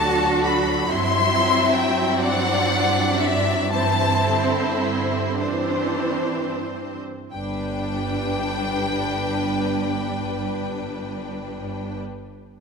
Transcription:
Already playing: D2 F#3 D4 F#4 A4 A5
0.45 B5
0.87 G2 C4 E4 E5 C6
1.75 G5
2.18 D4 D5 F#5
3.20 E5
3.73 E3 C4 E4 C5 A5
4.27 D3
4.84 D3
5.39 E3 C4 D4 C5
7.32 G1 G2 G3 D4 B4 G5

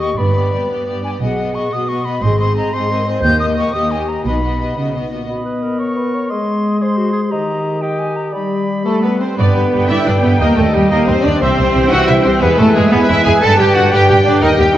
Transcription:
Already playing: D#2 G4
0.00 A#3 G4 D#5 C#6
0.16 G1 G2 B3 G4 B4 D5 B5
0.33 B3 D5
0.37 G4
0.52 B3 G4 D5
0.68 G2 B3 G4 D5
0.86 B3 G4 D5
1.03 B3 G4 D5 G#5
1.20 B1 B2 B3 F#4 D#5 F#5
1.24 G#4
1.36 B3 D#5
1.41 F#4
1.53 B3 F#4 D#5 C#6
1.70 B2 B3 D#5 D#6
1.74 F#4
1.87 B3 D#5 C#6
1.91 F#4
2.04 B3 F#4 D#5 B5
2.21 G#1 G#2 C4 G#4 D#5 C6
2.25 G#4
2.38 C4 G#4 D#5 C6
2.55 C4 G#4 D#5 A#5
2.73 G#2 C4 G#4 D#5 C6
2.89 C4 G#4 A#4 D#5
3.06 C4 G#4 C5 D#5
3.22 D#2 A#3 G4 D#5 G6
3.27 A#4
3.39 A#3 G4 D#5 D#6
3.56 A#3 G4 D#5 C#6
3.73 D#2 A#3 G4 D#5 D#6
3.90 A#3 G4 D#5 G#5
4.08 A#3 G4 D#5 A#5
4.25 B1 B2 B3 D#4 F#4 D#5 B5
4.42 B3 F#4 D#5
4.60 B3 F#4 D#5
4.76 C#3 B3 F#4 D#5
4.93 B2 B3 F#4 D#5
5.11 A#2 B3 F#4 D#5
5.27 B3 F#4 D#5 B5
5.45 B4
5.62 A#4
5.79 C#5 C#6
5.97 B4
6.14 C#5
6.30 G#3 G#4 D#5 C6
6.80 G#4 C5 C6
6.97 F#4
7.13 G#4
7.29 D#3 G4 D#5 A#5
7.81 G4 D#5 G5
7.99 G#5
8.16 A#5
8.33 G3 G4 D5 B5
8.85 A3 A4
9.02 B3 B4
9.19 C4 C5
9.37 G2 D3 G3 B3 B4 D5 G5
9.55 G2 B4
9.72 G2 G4
9.88 G2 E4 D5 E5
10.04 G2 D4 B4 D5
10.22 G2 B3 G4 B4
10.38 D#2 D#3 G3 A#3 G4 A#4 D#5
10.56 D#2 A3 A4 A#4
10.73 D#2 G3 G4
10.89 D#2 D#3 G3 A#3 G4 A#4 D#5
11.07 D#2 C4 A#4 C5
11.17 D5
11.23 D#2 D4 G4 D5
11.40 C2 E3 G3 C4 C5 E5 G5
11.58 C2 C5
11.74 C2 G4
11.90 C2 F#4 E5 F#5
12.07 C2 E4 C5 E5
12.23 C2 C4 G4 C5
12.39 E2 E3 G#3 B3 G#4 B4 E5 G#5
12.57 E2 A3 E4 A4
12.74 E2 G#3 B3 G#4
12.91 E2 E3 G#3 B3 G#4 B4
13.08 E2 E4 E5
13.24 E2 B3 G#4 G#5
13.41 G2 D3 G3 G4 A4 B4 D5 G5 A5
13.57 G2 G4 G5
13.74 G2 D4 F#4 F#5
13.91 G2 D3 G3 G4 B4 G5
14.08 G2 G4 G5
14.24 G2 D4 D5
14.41 D#2 D#3 G3 D#4 A#4 D#5 G5
14.58 D#2 G4 G5
14.74 D#2 D#5

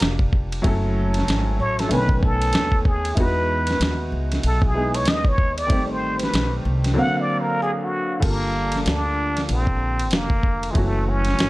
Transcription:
Already playing: G3 A#3 D4 F4 G4
0.00 F1, snare, hi-hat pedal, ride
0.19 kick
0.33 kick
0.52 ride
0.62 F#1 F#3 A3 C#4, kick, ride
0.66 E4 A4
1.14 snare, ride
1.28 G#1, snare, hi-hat pedal, ride
1.59 A1 C#5
1.79 A4, snare, ride
1.88 B1 D3 A3 B3, ride
1.92 D#3 C#4 B4 G#5
2.09 kick
2.23 A4, kick
2.42 ride
2.53 snare, hi-hat pedal, ride
2.72 kick
2.85 G#4, kick
3.05 ride
3.15 E2 G#3 B3 D#4 E4, kick, ride
3.19 F#4 B4
3.67 snare, ride
3.80 D#2, snare, hi-hat pedal, ride
4.12 C#2
4.32 snare, ride
4.43 B1 A4, ride
4.62 G#4, kick
4.74 G#3 B3 D#4 E4 G#4
4.94 C#5, ride
5.05 D#2 D#5, snare, hi-hat pedal, ride
5.25 C#5, kick
5.38 kick
5.58 D5, ride
5.67 A1 D#3 G3 A3, kick, ride
5.71 C4 G4
5.91 C5
6.19 B4, snare, ride
6.34 B1, snare, hi-hat pedal, ride
6.65 C2
6.84 snare, ride
6.94 D3 F#3 A#3 C4
6.99 F5 F#5
7.21 D5
7.41 A#4
7.63 G#4
7.83 F#4
8.20 G1 D3 G3 A4, kick, crash, ride
8.24 A#3 F4
8.72 snare, ride
8.86 D2 D4, snare, hi-hat pedal, ride
9.37 snare, ride
9.49 A#1 C4, ride
9.67 kick
9.99 ride
10.11 F1 A#3, snare, hi-hat pedal, ride
10.30 kick
10.43 kick
10.63 ride
10.71 E3 F#3 G#3
10.75 F#1 A3 C#4 F#4, kick, ride
11.09 C#4
11.25 snare, ride
11.39 G#1, snare, hi-hat pedal, ride

